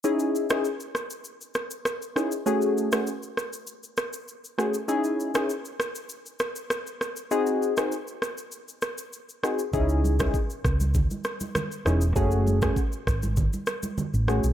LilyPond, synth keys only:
\new Staff \with { instrumentName = "Synth keys" } { \time 4/4 \key cis \minor \tempo 4 = 99 <cis' dis' e' gis'>8. <cis' dis' e' gis'>16 r2 r8 <cis' dis' e' gis'>16 r16 | <a cis' fis' gis'>8. <a cis' fis' gis'>16 r2 r8 <a cis' fis' gis'>16 r16 | <cis' dis' e' gis'>8. <cis' dis' e' gis'>16 r2. | <bis dis' fis' gis'>8. <bis dis' fis' gis'>16 r2 r8 <bis dis' fis' gis'>16 r16 |
<cis' dis' e' gis'>8. <cis' dis' e' gis'>16 r2 r8 <cis' dis' e' gis'>16 r16 | <a cis' fis' gis'>8. <a cis' fis' gis'>16 r2 r8 <a cis' fis' gis'>16 r16 | }